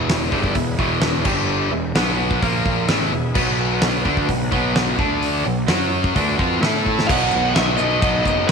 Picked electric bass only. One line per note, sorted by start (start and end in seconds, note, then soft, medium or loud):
0.00 0.28 E1 medium
0.32 0.54 G1 medium
0.56 0.77 E1 medium
0.78 1.22 E1 medium
1.26 1.69 G1 loud
1.71 1.93 E1 medium
1.95 2.38 B1 medium
2.42 2.86 A#1 medium
2.88 3.10 A1 loud
3.12 3.34 E1 medium
3.36 4.02 B1 medium
4.06 4.27 D2 loud
4.29 4.51 B1 medium
4.52 4.96 B1 loud
4.98 5.42 D2 medium
5.46 5.68 B1 medium
5.69 6.13 F#2 medium
6.16 6.38 D2 loud
6.39 6.60 F2 medium
6.60 7.05 A2 medium
7.09 7.29 B1 loud
7.34 7.53 B1 medium
7.57 7.76 B1 loud
7.80 7.99 B1 loud
8.02 8.22 B1 medium
8.25 8.45 F#1 medium
8.48 8.52 B1 medium